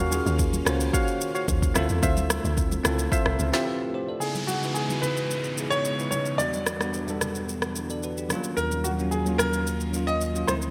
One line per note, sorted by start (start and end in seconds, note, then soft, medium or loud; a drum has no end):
0.00 0.21 D#2 loud
0.00 1.73 D#3 medium
0.00 1.73 A#3 medium
0.00 0.11 C#4 loud
0.00 1.73 C#4 medium
0.00 0.12 F4 medium
0.00 0.13 F#4 medium
0.00 0.35 F#4 loud
0.00 1.78 A#4 loud
0.00 0.35 C#5 medium
0.00 0.35 F5 loud
0.00 1.73 F5 medium
0.00 1.77 G#5 medium
0.11 0.55 C#4 medium
0.11 0.56 F4 medium
0.11 0.57 F#4 medium
0.11 0.57 G#4 medium
0.11 high conga medium
0.11 shaker loud
0.26 0.62 D#2 loud
0.26 shaker medium
0.39 kick medium
0.39 shaker medium
0.53 high conga medium
0.53 shaker medium
0.65 0.91 C#2 loud
0.65 1.53 C#4 medium
0.65 1.54 F4 medium
0.65 1.55 F#4 medium
0.65 1.55 C5 loud
0.65 cross-stick loud
0.65 low conga medium
0.65 shaker medium
0.80 shaker medium
0.93 1.32 F#4 medium
0.93 1.32 C#5 medium
0.93 1.32 F5 loud
0.93 kick loud
0.93 shaker medium
1.08 shaker soft
1.21 shaker medium
1.35 1.47 F#4 medium
1.35 1.47 C#5 medium
1.35 1.47 F5 medium
1.35 shaker medium
1.48 1.72 D#2 medium
1.48 kick loud
1.48 shaker medium
1.62 kick medium
1.62 shaker medium
1.74 1.88 D2 loud
1.74 4.19 D3 medium
1.74 4.18 F3 medium
1.74 4.19 A3 medium
1.74 2.62 C4 medium
1.74 4.19 C4 medium
1.74 2.63 E4 medium
1.74 1.88 F4 medium
1.74 2.64 F4 medium
1.74 2.64 A4 loud
1.74 1.88 C5 medium
1.74 4.19 E5 medium
1.74 1.88 E5 medium
1.74 cross-stick loud
1.74 high conga medium
1.74 low conga medium
1.74 shaker medium
1.89 2.01 E2 medium
1.89 high conga medium
1.89 shaker medium
2.02 2.39 D2 loud
2.02 2.53 F4 loud
2.02 2.53 C5 medium
2.02 2.53 E5 loud
2.02 kick loud
2.02 shaker medium
2.17 high conga medium
2.17 shaker medium
2.30 cross-stick loud
2.30 high conga medium
2.30 shaker loud
2.44 2.80 D2 loud
2.44 shaker medium
2.57 kick loud
2.57 shaker medium
2.71 high conga medium
2.71 shaker medium
2.83 3.09 C#2 medium
2.83 3.39 C4 medium
2.83 3.39 E4 medium
2.83 3.40 F4 medium
2.83 cross-stick loud
2.83 low conga medium
2.83 shaker medium
2.87 3.41 A4 loud
2.99 shaker medium
3.12 3.50 F4 medium
3.12 3.50 C5 medium
3.12 3.50 E5 loud
3.12 kick loud
3.12 shaker medium
3.26 3.38 C2 medium
3.26 cross-stick medium
3.39 3.52 C#2 loud
3.39 shaker medium
3.52 4.07 C4 medium
3.52 3.66 E4 medium
3.52 3.65 F4 medium
3.52 3.67 F4 medium
3.52 3.68 G4 loud
3.52 3.65 C5 medium
3.52 3.65 E5 medium
3.52 snare medium
3.52 shaker soft
3.67 3.93 F4 medium
3.67 3.93 B4 medium
3.94 4.08 G4 medium
3.94 4.07 C5 medium
4.09 4.34 A4 medium
4.09 4.34 D5 medium
4.20 4.53 C#3 medium
4.20 6.37 C#3 medium
4.20 8.26 E3 medium
4.20 6.37 G#3 medium
4.20 4.54 B3 medium
4.20 8.26 B3 medium
4.20 4.54 D#4 medium
4.20 4.55 E4 medium
4.20 4.49 G#4 medium
4.20 4.55 G#4 medium
4.20 6.37 D#5 medium
4.20 downlifter medium
4.20 shaker medium
4.35 high conga medium
4.35 shaker medium
4.47 4.73 F#4 medium
4.47 high conga medium
4.47 shaker loud
4.61 4.83 C#3 medium
4.61 4.84 B3 medium
4.61 4.84 D#4 medium
4.61 4.85 E4 medium
4.61 4.85 B4 medium
4.61 shaker soft
4.74 5.03 G#4 medium
4.74 shaker medium
4.89 5.44 C#3 medium
4.89 5.44 B3 medium
4.89 5.45 D#4 medium
4.89 5.45 E4 medium
4.89 5.46 F#4 medium
4.89 high conga medium
4.89 shaker soft
5.02 5.73 B4 medium
5.02 low conga medium
5.02 shaker medium
5.17 shaker medium
5.31 shaker medium
5.44 shaker soft
5.56 5.90 C#3 medium
5.56 5.90 B3 medium
5.56 5.91 D#4 medium
5.56 5.91 E4 medium
5.56 5.92 G#4 medium
5.56 shaker medium
5.70 6.09 C#5 loud
5.70 shaker soft
5.85 shaker medium
5.98 6.31 C#3 medium
5.98 6.31 B3 medium
5.98 6.32 D#4 medium
5.98 6.32 E4 medium
5.98 6.33 B4 medium
5.98 shaker soft
6.11 6.39 C#5 loud
6.11 high conga medium
6.11 low conga medium
6.11 shaker medium
6.25 shaker medium
6.38 6.71 E2 medium
6.38 6.72 G3 medium
6.38 8.28 G3 medium
6.38 6.72 B3 medium
6.38 8.28 D4 medium
6.38 6.73 D4 medium
6.38 8.28 F#4 medium
6.38 7.16 D5 loud
6.38 shaker medium
6.42 6.73 F#4 medium
6.53 high conga medium
6.53 shaker medium
6.66 cross-stick medium
6.66 high conga medium
6.66 shaker medium
6.79 7.02 E2 medium
6.79 7.02 G3 medium
6.79 7.03 B3 medium
6.79 7.03 D4 medium
6.79 cross-stick medium
6.79 shaker soft
6.83 7.04 F#4 medium
6.94 shaker medium
7.07 7.62 E2 medium
7.07 7.62 G3 medium
7.07 7.63 B3 medium
7.07 7.63 D4 medium
7.07 7.64 A4 medium
7.07 high conga medium
7.07 shaker soft
7.21 cross-stick medium
7.21 low conga medium
7.21 shaker medium
7.35 shaker medium
7.49 shaker medium
7.62 cross-stick medium
7.62 shaker soft
7.76 shaker medium
7.90 8.03 A4 medium
7.90 8.02 D5 medium
7.90 shaker soft
8.03 8.17 F#4 medium
8.03 8.17 B4 medium
8.03 shaker medium
8.17 8.44 D4 medium
8.17 8.43 G4 medium
8.17 shaker soft
8.29 10.46 D#3 medium
8.29 8.36 F3 medium
8.29 10.46 F#3 medium
8.29 10.46 A#3 medium
8.29 8.85 A#3 medium
8.29 10.46 C#4 medium
8.29 8.85 C#4 medium
8.29 10.46 F4 medium
8.29 8.86 F4 loud
8.29 cross-stick medium
8.29 high conga medium
8.29 low conga medium
8.29 shaker medium
8.35 8.87 F#3 medium
8.44 shaker medium
8.57 10.44 D#2 medium
8.57 8.85 A#4 medium
8.57 shaker medium
8.71 high conga medium
8.71 shaker medium
8.84 8.90 F#4 medium
8.84 high conga medium
8.84 shaker medium
8.97 9.20 F#3 medium
8.97 9.20 A#3 medium
8.97 9.21 C#4 medium
8.97 9.22 F#4 medium
8.97 shaker soft
9.11 9.40 G#4 medium
9.11 shaker medium
9.25 9.80 F#3 medium
9.25 9.81 A#3 medium
9.25 9.81 C#4 medium
9.25 high conga medium
9.25 shaker soft
9.29 9.82 F4 medium
9.38 10.10 A#4 loud
9.38 cross-stick medium
9.38 low conga medium
9.38 shaker medium
9.53 shaker medium
9.67 shaker medium
9.80 shaker soft
9.93 10.26 F#3 medium
9.93 10.27 A#3 medium
9.93 10.27 C#4 medium
9.93 10.28 F4 medium
9.93 shaker medium
10.07 10.45 D#5 loud
10.07 shaker soft
10.21 shaker medium
10.34 10.48 F#3 medium
10.34 10.48 A#3 medium
10.34 10.49 C#4 medium
10.34 shaker soft
10.38 10.50 F4 medium
10.47 10.71 D2 medium
10.47 10.71 D3 medium
10.47 10.71 F3 medium
10.47 10.71 A3 medium
10.47 10.71 C4 medium
10.47 10.71 D4 medium
10.47 10.71 E4 medium
10.47 10.54 C5 medium
10.47 cross-stick medium
10.47 high conga medium
10.47 low conga medium
10.47 shaker medium
10.62 shaker medium